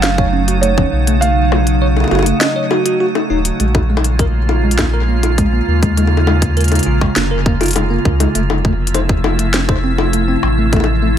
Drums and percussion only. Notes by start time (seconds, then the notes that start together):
0.03 snare, closed hi-hat
0.18 kick
0.48 closed hi-hat
0.63 closed hi-hat
0.78 kick, high tom
1.07 closed hi-hat
1.22 closed hi-hat
1.52 high tom, high bongo
1.67 closed hi-hat
1.97 high bongo
2.00 high bongo
2.04 high bongo
2.08 high bongo
2.11 high bongo
2.15 high bongo
2.19 high bongo
2.23 closed hi-hat, high bongo
2.41 snare, closed hi-hat
2.71 high bongo
2.86 closed hi-hat
3.15 high bongo
3.45 closed hi-hat
3.60 closed hi-hat
3.75 kick, high bongo
3.97 high bongo
4.04 closed hi-hat
4.19 kick, closed hi-hat
4.49 high bongo
4.71 closed hi-hat
4.79 kick, snare, closed hi-hat, high bongo
5.23 closed hi-hat, high bongo
5.38 kick, closed hi-hat
5.83 kick, closed hi-hat
5.97 closed hi-hat, high bongo
6.07 high bongo
6.17 high bongo
6.27 high bongo
6.42 kick, closed hi-hat
6.57 closed hi-hat
6.61 closed hi-hat
6.64 closed hi-hat
6.68 closed hi-hat
6.72 closed hi-hat, high bongo
6.75 closed hi-hat
6.79 closed hi-hat
6.83 closed hi-hat
7.01 kick, high bongo
7.16 snare, closed hi-hat
7.46 kick
7.61 closed hi-hat, high bongo
7.63 closed hi-hat
7.66 closed hi-hat
7.68 closed hi-hat
7.71 closed hi-hat
7.73 closed hi-hat
7.76 closed hi-hat, high bongo
8.05 kick
8.20 closed hi-hat, high bongo
8.35 closed hi-hat
8.50 high bongo
8.65 kick
8.87 closed hi-hat
8.95 closed hi-hat, high bongo
9.09 kick
9.24 high bongo
9.39 closed hi-hat
9.54 snare, closed hi-hat
9.69 kick, high bongo
9.98 high bongo
10.13 closed hi-hat
10.43 high bongo
10.73 kick, closed hi-hat, high bongo
10.76 high bongo
10.80 high bongo
10.84 high bongo